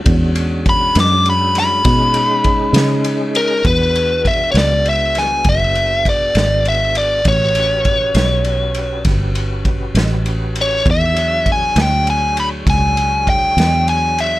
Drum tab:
RD |xxxxxxxxxxxx|xxxxxxxxxxxx|xxxxxxxxxxxx|xxxxxxxxxxxx|
SD |---o-oo--o--|---o-o---o--|---o--o--o--|---o--o--o--|
BD |o-o---o-o---|o-o---o-o---|o-o---o-o---|o-o---o-o---|